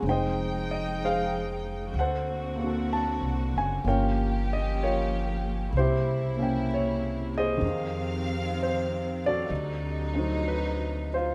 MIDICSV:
0, 0, Header, 1, 4, 480
1, 0, Start_track
1, 0, Key_signature, -4, "minor"
1, 0, Tempo, 953895
1, 16, Time_signature, 4, 2, 24, 8
1, 1936, Tempo, 943396
1, 5751, End_track
2, 0, Start_track
2, 0, Title_t, "Grand piano"
2, 0, Program_c, 0, 0
2, 0, Control_c, 0, 64, 127
2, 0, Note_on_c, 0, 56, 41
2, 16, Note_on_c, 0, 60, 39
2, 21, Control_c, 0, 64, 0
2, 34, Note_on_c, 0, 63, 42
2, 45, Note_on_c, 0, 79, 79
2, 48, Note_on_c, 0, 72, 57
2, 55, Note_on_c, 0, 75, 60
2, 115, Control_c, 0, 64, 127
2, 351, Note_off_c, 0, 75, 0
2, 358, Note_on_c, 0, 75, 66
2, 369, Note_off_c, 0, 79, 0
2, 509, Note_off_c, 0, 75, 0
2, 518, Note_off_c, 0, 72, 0
2, 525, Note_on_c, 0, 72, 52
2, 527, Note_on_c, 0, 68, 50
2, 528, Note_on_c, 0, 77, 71
2, 969, Note_off_c, 0, 56, 0
2, 973, Note_off_c, 0, 72, 0
2, 974, Note_off_c, 0, 68, 0
2, 980, Note_off_c, 0, 60, 0
2, 987, Control_c, 0, 64, 0
2, 989, Note_off_c, 0, 63, 0
2, 1001, Note_on_c, 0, 78, 75
2, 1004, Note_on_c, 0, 69, 54
2, 1009, Note_off_c, 0, 77, 0
2, 1009, Note_on_c, 0, 72, 54
2, 1069, Control_c, 0, 64, 127
2, 1286, Note_on_c, 0, 58, 52
2, 1303, Note_on_c, 0, 60, 44
2, 1323, Note_on_c, 0, 66, 47
2, 1334, Note_off_c, 0, 69, 0
2, 1342, Note_on_c, 0, 69, 52
2, 1473, Note_on_c, 0, 81, 72
2, 1484, Note_off_c, 0, 78, 0
2, 1772, Note_off_c, 0, 81, 0
2, 1800, Note_on_c, 0, 80, 73
2, 1925, Note_off_c, 0, 58, 0
2, 1931, Note_off_c, 0, 72, 0
2, 1933, Note_on_c, 0, 58, 46
2, 1934, Note_off_c, 0, 80, 0
2, 1935, Note_off_c, 0, 60, 0
2, 1936, Note_on_c, 0, 61, 46
2, 1944, Control_c, 0, 64, 0
2, 1945, Note_off_c, 0, 66, 0
2, 1949, Note_on_c, 0, 73, 55
2, 1951, Note_on_c, 0, 65, 45
2, 1951, Note_on_c, 0, 79, 80
2, 1952, Note_on_c, 0, 70, 58
2, 1955, Note_off_c, 0, 69, 0
2, 2042, Control_c, 0, 64, 127
2, 2283, Note_off_c, 0, 79, 0
2, 2284, Note_on_c, 0, 75, 70
2, 2429, Note_off_c, 0, 73, 0
2, 2431, Note_off_c, 0, 70, 0
2, 2432, Note_off_c, 0, 75, 0
2, 2433, Note_off_c, 0, 65, 0
2, 2436, Note_on_c, 0, 73, 70
2, 2439, Note_on_c, 0, 70, 49
2, 2441, Note_on_c, 0, 65, 50
2, 2889, Note_off_c, 0, 70, 0
2, 2890, Note_off_c, 0, 65, 0
2, 2897, Note_off_c, 0, 58, 0
2, 2898, Note_off_c, 0, 61, 0
2, 2906, Control_c, 0, 64, 0
2, 2914, Note_on_c, 0, 72, 76
2, 2920, Note_on_c, 0, 67, 54
2, 2922, Note_off_c, 0, 73, 0
2, 2924, Note_on_c, 0, 64, 56
2, 2996, Control_c, 0, 64, 127
2, 3217, Note_on_c, 0, 58, 47
2, 3228, Note_off_c, 0, 64, 0
2, 3229, Note_on_c, 0, 61, 45
2, 3236, Note_on_c, 0, 64, 47
2, 3248, Note_on_c, 0, 79, 56
2, 3365, Note_off_c, 0, 72, 0
2, 3406, Note_on_c, 0, 73, 64
2, 3698, Note_off_c, 0, 73, 0
2, 3730, Note_on_c, 0, 68, 55
2, 3731, Note_on_c, 0, 75, 86
2, 3737, Note_on_c, 0, 72, 50
2, 3832, Note_on_c, 0, 51, 50
2, 3846, Note_off_c, 0, 67, 0
2, 3850, Note_on_c, 0, 60, 42
2, 3851, Note_off_c, 0, 58, 0
2, 3857, Note_off_c, 0, 61, 0
2, 3861, Note_off_c, 0, 64, 0
2, 3861, Control_c, 0, 64, 0
2, 3867, Note_off_c, 0, 79, 0
2, 3873, Note_on_c, 0, 63, 41
2, 3960, Control_c, 0, 64, 127
2, 4360, Note_off_c, 0, 72, 0
2, 4366, Note_off_c, 0, 75, 0
2, 4368, Note_on_c, 0, 72, 65
2, 4654, Note_off_c, 0, 68, 0
2, 4687, Note_off_c, 0, 72, 0
2, 4691, Note_on_c, 0, 74, 88
2, 4695, Note_on_c, 0, 66, 55
2, 4697, Note_on_c, 0, 69, 54
2, 4801, Note_off_c, 0, 51, 0
2, 4809, Note_off_c, 0, 60, 0
2, 4820, Control_c, 0, 64, 0
2, 4821, Note_off_c, 0, 63, 0
2, 4910, Control_c, 0, 64, 127
2, 5137, Note_on_c, 0, 57, 48
2, 5143, Note_on_c, 0, 60, 41
2, 5152, Note_on_c, 0, 63, 41
2, 5160, Note_on_c, 0, 54, 53
2, 5309, Note_on_c, 0, 71, 62
2, 5326, Note_off_c, 0, 74, 0
2, 5619, Note_off_c, 0, 66, 0
2, 5620, Note_off_c, 0, 69, 0
2, 5640, Note_off_c, 0, 71, 0
2, 5646, Note_on_c, 0, 72, 70
2, 5654, Note_on_c, 0, 65, 49
2, 5751, Note_off_c, 0, 54, 0
2, 5751, Note_off_c, 0, 57, 0
2, 5751, Note_off_c, 0, 60, 0
2, 5751, Note_off_c, 0, 63, 0
2, 5751, Note_off_c, 0, 65, 0
2, 5751, Note_off_c, 0, 72, 0
2, 5751, End_track
3, 0, Start_track
3, 0, Title_t, "String section"
3, 0, Program_c, 1, 48
3, 17, Note_on_c, 1, 56, 54
3, 17, Note_on_c, 1, 79, 64
3, 19, Note_on_c, 1, 53, 58
3, 19, Note_on_c, 1, 63, 57
3, 970, Note_on_c, 1, 50, 62
3, 971, Note_off_c, 1, 56, 0
3, 971, Note_off_c, 1, 79, 0
3, 972, Note_off_c, 1, 53, 0
3, 972, Note_off_c, 1, 63, 0
3, 972, Note_on_c, 1, 58, 51
3, 972, Note_on_c, 1, 60, 58
3, 972, Note_on_c, 1, 66, 62
3, 1921, Note_on_c, 1, 53, 64
3, 1922, Note_on_c, 1, 67, 71
3, 1923, Note_off_c, 1, 50, 0
3, 1923, Note_on_c, 1, 61, 56
3, 1924, Note_off_c, 1, 60, 0
3, 1924, Note_off_c, 1, 66, 0
3, 2881, Note_off_c, 1, 53, 0
3, 2882, Note_off_c, 1, 61, 0
3, 2882, Note_off_c, 1, 67, 0
3, 2886, Note_on_c, 1, 64, 65
3, 2887, Note_on_c, 1, 49, 58
3, 2888, Note_on_c, 1, 48, 60
3, 3831, Note_off_c, 1, 58, 0
3, 3840, Note_off_c, 1, 49, 0
3, 3840, Note_off_c, 1, 64, 0
3, 3841, Note_on_c, 1, 51, 58
3, 3841, Note_on_c, 1, 60, 62
3, 3842, Note_on_c, 1, 77, 71
3, 4795, Note_off_c, 1, 51, 0
3, 4795, Note_off_c, 1, 60, 0
3, 4795, Note_on_c, 1, 54, 62
3, 4796, Note_off_c, 1, 77, 0
3, 4798, Note_on_c, 1, 63, 77
3, 4799, Note_on_c, 1, 50, 62
3, 5750, Note_off_c, 1, 48, 0
3, 5751, Note_off_c, 1, 50, 0
3, 5751, Note_off_c, 1, 54, 0
3, 5751, Note_off_c, 1, 63, 0
3, 5751, End_track
4, 0, Start_track
4, 0, Title_t, "Upright bass"
4, 0, Program_c, 2, 32
4, 12, Note_on_c, 2, 29, 68
4, 958, Note_off_c, 2, 29, 0
4, 975, Note_on_c, 2, 38, 69
4, 1596, Note_off_c, 2, 38, 0
4, 1616, Note_on_c, 2, 36, 50
4, 1765, Note_off_c, 2, 36, 0
4, 1781, Note_on_c, 2, 30, 56
4, 1928, Note_off_c, 2, 30, 0
4, 1935, Note_on_c, 2, 31, 64
4, 2877, Note_off_c, 2, 31, 0
4, 2892, Note_on_c, 2, 36, 67
4, 3832, Note_off_c, 2, 36, 0
4, 3851, Note_on_c, 2, 41, 74
4, 4790, Note_off_c, 2, 41, 0
4, 4811, Note_on_c, 2, 38, 68
4, 5751, Note_off_c, 2, 38, 0
4, 5751, End_track
0, 0, End_of_file